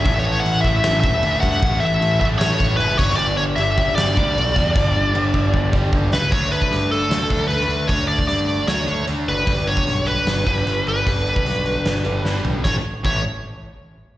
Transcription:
<<
  \new Staff \with { instrumentName = "Lead electric guitar" } { \time 4/4 \key a \mixolydian \tempo 4 = 153 e''8 cis''8 fis''8 e''4 e''4 fis''8~ | fis''8 e''4 e''8 cis''4 b'8 cis''8 | d''8 cis''8 e''4 d''2~ | d''2. r8 b'8 |
cis''8 b'4 a'4. b'4 | cis''8 d''8 d''4 cis''4 r8 b'8~ | b'8 cis''4 b'2 b'8~ | b'2.~ b'8 r8 |
cis''8 r8 cis''8 r2 r8 | }
  \new Staff \with { instrumentName = "Overdriven electric guitar" } { \clef bass \time 4/4 \key a \mixolydian <a, e a>4. <a, e a>4. <a, e a>4 | <a, e a>4. <a, e a>4. <a, e a>8 <g, d g>8~ | <g, d g>4 <g, d g>4. <g, d g>4 <g, d g>8~ | <g, d g>4 <g, d g>4. <g, d g>4 r8 |
<d a d'>2~ <d a d'>8 <d a d'>8 <d a d'>4 | <d a d'>2~ <d a d'>8 <d a d'>8 <d a d'>4 | <g, d g>2~ <g, d g>8 <g, d g>8 <g, d g>4 | <g, d g>2~ <g, d g>8 <g, d g>8 <g, d g>4 |
<a, e a>8 r8 <a, e a>8 r2 r8 | }
  \new Staff \with { instrumentName = "Picked electric bass" } { \clef bass \time 4/4 \key a \mixolydian a,,4 a,,8 a,,8 a,,8 e,,8 d,8 g,8 | a,,8 a,,8 a,,8 a,,8 a,,4 fis,,8 g,,8 | g,,4 g,,8 g,,8 g,,8 d,8 b,,8 e,8 | g,,8 g,,8 g,,8 g,,8 g,,4 g,,8 cis,8 |
d,4 g,4 d,8 d,8 d,8 d,8 | d,4 g,4 d,8 d,8 d,8 fis,,8 | g,,4 b,,4 g,,8 g,,8 g,,8 g,,8 | g,,4 b,,4 g,,8 g,,8 g,,8 b,,8 |
a,,8 r8 a,,8 r2 r8 | }
  \new DrumStaff \with { instrumentName = "Drums" } \drummode { \time 4/4 <cymc bd>4 cymc8 bd8 <cymc sn>8 bd8 cymc8 <bd sn>8 | <cymc bd>4 cymc8 bd8 <cymc sn>8 bd8 cymc8 <cymc bd sn>8 | cymc4 cymc8 bd8 <cymc sn>8 bd8 cymc8 <bd sn>8 | <cymc bd>4 cymc8 bd8 bd8 bd8 bd8 sn8 |
<cymc bd>8 hho16 bd16 hho8 hho8 <hho sn>8 <hho bd>8 hho16 sn16 hho8 | <hho bd>8 hho16 bd16 hho8 hho8 <hho sn>8 hho8 hho8 hho8 | <hho bd>8 hho16 bd16 hho8 hho8 <hho sn>8 <hho bd>8 hho8 hho8 | <hho bd>8 hho16 bd16 hho8 hho8 <hho sn>8 hho8 sn8 tomfh8 |
<bd sn>4 <cymc bd>4 r4 r4 | }
>>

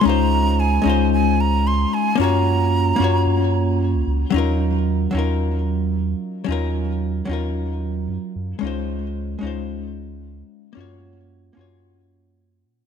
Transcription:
<<
  \new Staff \with { instrumentName = "Flute" } { \time 4/4 \key ees \dorian \tempo 4 = 112 bes''4 aes''4 aes''8 bes''8 c'''8 aes''8 | bes''2. r4 | r1 | r1 |
r1 | r1 | }
  \new Staff \with { instrumentName = "Hollow-body jazz guitar" } { \time 4/4 \key ees \dorian <aes des' ees' f' c''>4. <aes des' ees' f' c''>2~ <aes des' ees' f' c''>8 | <bes des' f' ges' des''>4. <bes des' f' ges' des''>2~ <bes des' f' ges' des''>8 | <ges des' ees' f' bes'>4. <ges des' ees' f' bes'>2~ <ges des' ees' f' bes'>8 | <ges des' ees' f' bes'>4. <ges des' ees' f' bes'>2~ <ges des' ees' f' bes'>8 |
<aes des' ees' f' c''>4. <aes des' ees' f' c''>2~ <aes des' ees' f' c''>8 | <bes des' f' ges' des''>4. <bes des' f' ges' des''>2~ <bes des' f' ges' des''>8 | }
  \new Staff \with { instrumentName = "Analog synth bass" } { \clef bass \time 4/4 \key ees \dorian des,4~ des,16 r16 des,4.~ des,16 r8. | ges,4~ ges,16 r16 ges,8 ges,4~ ges,16 des,16 des,16 r16 | ees,4~ ees,16 r16 ees,4.~ ees,16 r8. | ees,4~ ees,16 r16 ees,4. ges,16 r16 ges,16 r16 |
des,4~ des,16 r16 des,4.~ des,16 r8. | ges,4~ ges,16 r16 ges,2 bes,16 r16 | }
>>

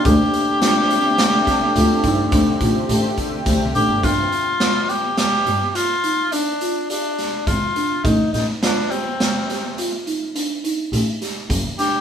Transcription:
<<
  \new Staff \with { instrumentName = "Marimba" } { \time 7/4 \key d \phrygian \tempo 4 = 105 d'4 f'8 g'4 g'8 f'8 ees'8 d'8 f'8 g'8 g'4 d'8 | d'4 f'8 g'4 g'8 f'8 ees'8 d'8 f'8 g'8 g'4 d'8 | ees'4 f'8 g'4 g'8 f'8 ees'8 d'8 ees'8 g'8 g'4 d'8 | }
  \new Staff \with { instrumentName = "Tenor saxophone" } { \time 7/4 \key d \phrygian g'1. r8 g'8 | f'4. g'8 g'8.~ g'32 g'32 f'4 d'4 d'4 f'4 | ees'8 ees'8 d'8 c'2 r2. g'8 | }
  \new Staff \with { instrumentName = "Alto saxophone" } { \time 7/4 \key d \phrygian d'1. r4 | r1. r4 | r1. r4 | }
  \new Staff \with { instrumentName = "Analog synth pad" } { \time 7/4 \key d \phrygian <d a c' g'>8. <d a c' g'>8. r16 <d a c' a'>8. r16 <d a c' a'>8. r16 <d a c' g'>8. <d a c' g'>8. r16 <d a c' g'>8. r16 <d a c' g'>8 | r1. r4 | r1. r4 | }
  \new Staff \with { instrumentName = "Double bass" } { \clef bass \time 7/4 \key d \phrygian d,2. d,8 g,8 d,8 a,,8 a,,4 d,16 c,16 a,,16 g,,16 | g,,8 r2 g,2.~ g,8 aes,,4 | a,,8 a,,1 r8 a,,4 fis,,8 r8 | }
  \new DrumStaff \with { instrumentName = "Drums" } \drummode { \time 7/4 <hh bd>8 hh8 <hh sn>8 hh8 <hh sn>8 <hh bd sn>8 hh8 <hh bd>8 <hh bd>8 <hh bd>8 hh8 <hh bd>8 <hh bd>8 hh8 | <hh bd>8 hh8 <hh sn>8 hh8 <hh sn>8 hh8 hh8 hh8 hh8 hh8 hh8 <hh sn>8 <hh bd>8 hh8 | <hh bd>8 <hh sn>8 <hh sn>8 hh8 <hh sn>8 <hh sn>8 hh8 hh8 hh8 hh8 hh8 <hh sn>8 <hh bd>8 <hh sn>8 | }
>>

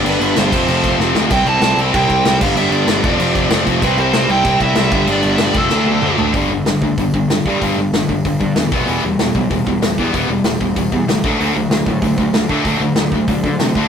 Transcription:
<<
  \new Staff \with { instrumentName = "Lead electric guitar" } { \time 4/4 \key g \mixolydian \tempo 4 = 190 b'8 b'8 c''2 r4 | g''8 a''4 r8 g''4. f''8 | e''8 d''2. r8 | b'8 c''4 g''4 e''4. |
d''8. e''16 d''8 a'2 r8 | \key g \major r1 | r1 | r1 |
r1 | r1 | r1 | }
  \new Staff \with { instrumentName = "Distorted electric guitar" } { \clef bass \time 4/4 \key g \mixolydian <g, d g b d'>4 <g, d g b d'>8 <f, c f a c'>8 <f, c f a c'>4 <f, c f a c'>8 <f, c f a c'>8 | <c g c' e'>4 <c g c' e'>8 <c g c' e'>8 <c g c' e'>4 <c g c' e'>8 <g, d g b d'>8 | <g, d g b d'>4 <g, d g b d'>8 <f, c f a c'>8 <f, c f a c'>4 <f, c f a c'>8 <f, c f a c'>8 | <c g c' e'>4 <c g c' e'>8 <c g c' e'>8 <c g c' e'>4 <c g c' e'>8 <g, d g b d'>8 |
<g, d g b d'>4 <g, d g b d'>8 <f, c f a c'>8 <d fis a d'>4 <d fis a d'>8 <d fis a d'>8 | \key g \major <g, d g>8 <g, d>8 <g, d>8 <g, d>8 <g, d>8 <g, d>8 <g, d>8 <g, d g>8 | <g, d g>8 <g, d>8 <g, d>8 <g, d>8 <g, d>8 <g, d>8 <g, d>8 <e g b>8 | <e g b>8 <e g>8 <e g>8 <e g>8 <e g>8 <e g>8 <e g>8 <e g b>8 |
<e g b>8 <e g>8 <e g>8 <e g>8 <e g>8 <e g>8 <e g>8 <d fis a>8 | <d fis a>8 <d fis>8 <d fis>8 <d fis>8 <d fis>8 <d fis>8 <d fis>8 <d fis a>8 | <d fis a>8 <d fis>8 <d fis>8 <d fis>8 <d fis>8 <d fis>8 <d fis>8 <d fis a>8 | }
  \new Staff \with { instrumentName = "Distorted electric guitar" } { \clef bass \time 4/4 \key g \mixolydian <g, d g>4 <g, d g>8 <f, c f>8 <f, c f>4 <f, c f>8 <f, c f>8 | <c g c'>4 <c g c'>8 <c g c'>8 <c g c'>4 <c g c'>8 <g, d g>8 | <g, d g>4 <g, d g>8 <f, c f>8 <f, c f>4 <f, c f>8 <f, c f>8 | <c g c'>4 <c g c'>8 <c g c'>8 <c g c'>4 <c g c'>8 <g, d g>8 |
<g, d g>4 <g, d g>8 <f, c f>8 <d a d'>4 <d a d'>8 <d a d'>8 | \key g \major <g, d g>8 <g, d>8 <g, d>8 <g, d>8 <g, d>8 <g, d>8 <g, d>8 <g, d g>8 | <g, d g>8 <g, d>8 <g, d>8 <g, d>8 <g, d>8 <g, d>8 <g, d>8 <e, b, e>8 | <e, b, e>8 <e, b,>8 <e, b,>8 <e, b,>8 <e, b,>8 <e, b,>8 <e, b,>8 <e, b, e>8 |
<e, b, e>8 <e, b,>8 <e, b,>8 <e, b,>8 <e, b,>8 <e, b,>8 <e, b,>8 <d a d'>8 | <d a d'>8 <d a>8 <d a>8 <d a>8 <d a>8 <d a>8 <d a>8 <d a d'>8 | <d a d'>8 <d a>8 <d a>8 <d a>8 <d a>8 <d a>8 <d a>8 <d a d'>8 | }
  \new Staff \with { instrumentName = "Distorted electric guitar" } { \clef bass \time 4/4 \key g \mixolydian <g, d g>4. <f, c f>2~ <f, c f>8 | <c g c'>2.~ <c g c'>8 <g, d g>8~ | <g, d g>4. <f, c f>2~ <f, c f>8 | <c g c'>2.~ <c g c'>8 <g, d g>8~ |
<g, d g>4. r8 <d a d'>2 | \key g \major r1 | r1 | r1 |
r1 | r1 | r1 | }
  \new Staff \with { instrumentName = "Picked electric bass" } { \clef bass \time 4/4 \key g \mixolydian g,,8 g,,8 g,,8 f,,8 f,,4 f,,8 d,8 | c,8 c,8 c,8 c,8 c,8 c,8 c,8 g,,8 | g,,8 g,,8 g,,8 f,,8 f,,4 f,,8 f,,8 | c,8 c,8 c,8 c,8 c,8 c,8 c,8 g,,8 |
g,,8 g,,8 g,,8 f,,8 d,4 d,8 d,8 | \key g \major g,,8 g,,8 g,,8 d,8 g,,8 g,,8 g,,8 g,8 | g,,8 g,,8 g,,8 g,,8 g,,8 g,8 e,8 e,,8 | e,,8 e,,8 e,,8 b,,8 e,,8 e,,8 e,,8 e,8 |
e,,8 e,,8 e,,8 e,,8 e,,8 e,8 d,8 d,8 | d,8 d,8 d,8 a,8 d,8 d,8 d,8 d8 | d,8 d,8 d,8 d,8 d,8 d8 c8 d,8 | }
  \new DrumStaff \with { instrumentName = "Drums" } \drummode { \time 4/4 cymc8 cymc8 <cymc sn>8 <cymc bd>8 cymc8 <cymc bd>8 sn8 sn8 | <cymc bd>8 cymc8 <cymc sn>8 cymc8 <cymc bd>8 <cymc bd>8 <cymc sn>8 <cymc bd>8 | cymc8 cymc8 <cymc sn>8 <cymc bd>8 cymc8 <cymc bd>8 <cymc sn>8 <cymc bd>8 | <cymc bd>8 cymc8 <cymc sn>8 cymc8 <cymc bd>8 <cymc bd>8 <cymc sn>8 <cymc bd>8 |
cymc8 cymc8 <cymc sn>8 <cymc bd>8 sn8 tommh8 toml8 tomfh8 | <hho bd>4 <hho sn>8 bd8 <hho bd>8 bd8 <hho sn>8 bd8 | <hho bd>4 <hho sn>8 bd8 <hho bd>8 bd8 <hho sn>8 bd8 | hho4 <hho sn>8 bd8 <hho bd>8 bd8 <hho sn>8 bd8 |
<hho bd>4 <hho sn>8 bd8 <hho bd>8 bd8 <hho sn>8 bd8 | hho4 <hho sn>8 bd8 <hho bd>8 bd8 <hho sn>8 bd8 | <hho bd>4 <hho sn>8 bd8 <hho bd>8 bd8 <hho sn>8 bd8 | }
>>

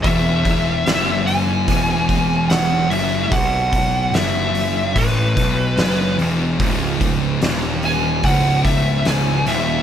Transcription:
<<
  \new Staff \with { instrumentName = "Lead electric guitar" } { \time 4/4 \key e \major \tempo 4 = 73 e''4. gis''4. fis''8 e''8 | fis''4 e''4 b'4. r8 | r4. gis''8 fis''8 e''8 gis''8 e''8 | }
  \new Staff \with { instrumentName = "Distorted electric guitar" } { \clef bass \time 4/4 \key e \major e,4 fis,4 e,4. fis,8 | b,4 fis,4 a,8 b,8 fis,8 e,8 | cis,4 dis,4 cis,4. dis,8 | }
  \new Staff \with { instrumentName = "Distorted electric guitar" } { \clef bass \time 4/4 \key e \major e,4 fis,4 e,4. fis,8 | b,4 fis,4 a,8 b,8 fis,8 e,8 | cis,4 dis,4 cis,4. dis,8 | }
  \new Staff \with { instrumentName = "Picked electric bass" } { \clef bass \time 4/4 \key e \major e,,4 fis,,4 e,,4. fis,,8 | b,,4 fis,,4 a,,8 b,,8 fis,,8 e,,8 | cis,,4 dis,,4 cis,,4. dis,,8 | }
  \new DrumStaff \with { instrumentName = "Drums" } \drummode { \time 4/4 <hho bd>8 <hho bd>8 <hho sn>8 hho8 <hho bd>8 <hho bd>8 <hho sn>8 hho8 | <hho bd>8 <hho bd>8 <hho sn>8 hho8 <hho bd>8 <hho bd>8 <hho sn>8 hho8 | <hho bd>8 <hho bd>8 <hho sn>8 hho8 <hho bd>8 <hho bd>8 <hho sn>8 <hho sn>8 | }
>>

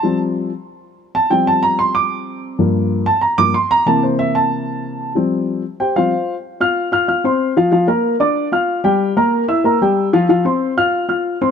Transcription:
<<
  \new Staff \with { instrumentName = "Upright piano" } { \time 4/4 \key f \major \tempo 4 = 187 a''8 r2. a''8 | g''8 a''8 bes''8 c'''8 d'''4. r8 | r4. a''8 bes''8 d'''8 c'''8 bes''8 | a''8 c''8 e''8 a''2~ a''8 |
r2 <g' c'' g''>8 <f' c'' f''>4~ <f' c'' f''>16 r16 | r8 <f' f'' f'''>4 <f' f'' f'''>8 <f' f'' f'''>8 <c' c'' c'''>4 <f f' f''>8 | <f f' f''>8 <bes bes' bes''>4 <d' d'' d'''>4 <f' f'' f'''>4 <g g' g''>8~ | <g g' g''>8 <bes bes' bes''>4 <e' e'' e'''>8 <bes bes' bes''>8 <g g' g''>4 <f f' f''>8 |
<f f' f''>8 <c' c'' c'''>4 <f' f'' f'''>4 <f' f'' f'''>4 <c' c'' c'''>8 | }
  \new Staff \with { instrumentName = "Upright piano" } { \clef bass \time 4/4 \key f \major <f g c'>4. r2 r8 | <f g c'>1 | <g, f bes>4. r4 <g, f bes>8 r4 | <c e bes>1 |
<f g c'>4. r4 <f g c'>8 r4 | r1 | r1 | r1 |
r1 | }
>>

